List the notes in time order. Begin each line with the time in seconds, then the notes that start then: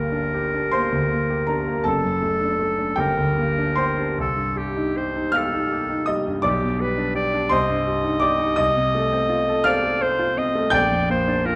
Already playing: G1 D2 A#3 G4 A#4 G5
0.12 D4
0.34 G4
0.54 D4
0.71 A#3 C5 C6
0.92 D2
1.11 A#3
1.30 G4
1.47 D4 A#4 A#5
1.67 A#3
1.84 F#1 A4 A5
1.88 A4
2.04 F#2
2.23 A3
2.41 D4
2.59 A3
2.79 D4
2.96 G1 G4 A#4 G5
3.17 D2
3.38 A#3
3.58 D4
3.76 G4 C5 C6
3.97 D4
4.18 C2 A4
4.36 G2
4.56 G3 G4
4.76 D#4
4.97 G4 C5
5.16 D#4
5.32 G4 F5 F6
5.37 A4
5.53 D#4
5.72 G4
5.90 D#4
6.06 G3 D#5 D#6
6.27 G2
6.42 B1 G4 D5 D6
6.62 B2
6.79 G3 B4
6.98 D4
7.15 G4 D5
7.33 D4
7.49 C2 C5 D#5 C6
7.70 G2
7.87 G3
8.04 D#4
8.20 G4 D5 D6
8.39 D#4
8.56 C2 D#5 D#6
8.76 C3
8.95 A3
9.12 C4
9.29 F4
9.48 A4
9.64 C5 D5 F5 F6
9.84 A4
10.01 C5
10.19 F4
10.37 C4 D#5
10.55 A3
10.70 A#1 D5 G5 G6
10.92 F2
11.10 A#3 C5
11.28 D4
11.46 F4 A#4